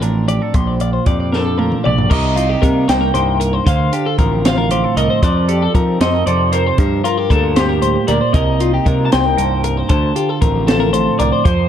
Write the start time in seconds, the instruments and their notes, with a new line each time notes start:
Already playing: picked electric bass A1, clean electric guitar F3 C4 A#4
0.02 clean electric guitar A2 D4 A#4, closed hi-hat
0.28 clean electric guitar G4 D5, closed hi-hat
0.42 clean electric guitar A4
0.54 picked electric bass A#1, clean electric guitar A#2 C5, kick, closed hi-hat
0.80 clean electric guitar F4 D5, closed hi-hat
0.93 clean electric guitar C5
1.06 picked electric bass F2, clean electric guitar F3 G4 D5, kick, closed hi-hat
1.20 clean electric guitar D5
1.32 clean electric guitar D4 A4 A#4, snare
1.46 clean electric guitar A4
1.58 clean electric guitar A#2 F4 A#4, high tom
1.72 mid tom
1.84 picked electric bass A#1, clean electric guitar G4 D5, mid tom
1.98 floor tom
2.10 picked electric bass C2, clean electric guitar C3 A#4 D#5, kick, crash
2.36 clean electric guitar D#4 F4, closed hi-hat
2.49 clean electric guitar G4
2.62 picked electric bass C3, clean electric guitar G3 A#3 A#4, kick, closed hi-hat
2.88 picked electric bass C2, clean electric guitar D#4 C5 G5, snare, closed hi-hat
3.01 clean electric guitar A#4
3.14 picked electric bass C2, clean electric guitar G2 A#4 C5, closed hi-hat
3.40 clean electric guitar A#4, closed hi-hat
3.53 clean electric guitar C5
3.66 picked electric bass D2, clean electric guitar D3 C5 F5, kick, closed hi-hat
3.93 clean electric guitar D4 G4, closed hi-hat
4.06 clean electric guitar F4 A4
4.18 picked electric bass A1, clean electric guitar F3 C4 A#4, kick, closed hi-hat
4.45 clean electric guitar F4 C5 F5, snare, closed hi-hat
4.58 clean electric guitar A#4
4.71 clean electric guitar A2 G4 C5, closed hi-hat
4.84 clean electric guitar A4
4.96 picked electric bass C2, clean electric guitar A#4 D#5, closed hi-hat
5.10 clean electric guitar C5
5.23 picked electric bass F2, clean electric guitar F3 C5 D5, kick, closed hi-hat
5.49 clean electric guitar G4 A4, closed hi-hat
5.62 clean electric guitar A4
5.74 picked electric bass F3, clean electric guitar C4 D#4 A#4, kick, closed hi-hat
6.01 picked electric bass F2, clean electric guitar A4 C5 D#5, snare, closed hi-hat
6.14 clean electric guitar A#4
6.26 picked electric bass F2, clean electric guitar C3 A4 C5 D5, closed hi-hat
6.52 clean electric guitar A#4 C5, closed hi-hat
6.66 clean electric guitar C5
6.78 clean electric guitar G2 A#4, picked electric bass G2, kick, closed hi-hat
7.04 clean electric guitar F4 A#4, closed hi-hat
7.18 clean electric guitar G4
7.30 picked electric bass D2, clean electric guitar G3 A#3 A4 A#4, kick, closed hi-hat
7.55 clean electric guitar G2 G4 C5, snare, closed hi-hat
7.69 clean electric guitar A#4
7.81 clean electric guitar A2 C5, closed hi-hat
8.08 picked electric bass D2, clean electric guitar A#2 A#4 D5, closed hi-hat
8.21 clean electric guitar C5
8.33 picked electric bass C2, clean electric guitar C3 A#4 D#5, kick, closed hi-hat
8.60 clean electric guitar D#4 F4, closed hi-hat
8.74 clean electric guitar G4
8.85 picked electric bass C3, clean electric guitar G3 A#3 A#4, kick, closed hi-hat
9.05 clean electric guitar A5
9.12 picked electric bass C2, clean electric guitar D#4 C5 G5, snare, closed hi-hat
9.26 clean electric guitar A#4
9.37 picked electric bass C2, clean electric guitar G2 A#4 C5, closed hi-hat
9.64 clean electric guitar A#4, closed hi-hat
9.77 clean electric guitar C5
9.89 picked electric bass D2, clean electric guitar D3 C5 A5, kick, closed hi-hat
10.16 clean electric guitar F4 G4, closed hi-hat
10.29 clean electric guitar A4
10.41 picked electric bass A1, clean electric guitar F3 C4 A#4, kick, closed hi-hat
10.67 clean electric guitar F4 A4 C5, snare, closed hi-hat
10.80 clean electric guitar A#4
10.93 clean electric guitar A2 F4 C5, closed hi-hat
11.19 picked electric bass C2, clean electric guitar A#4 D5, closed hi-hat
11.32 clean electric guitar C5
11.45 picked electric bass F2, clean electric guitar F3 C5, kick, closed hi-hat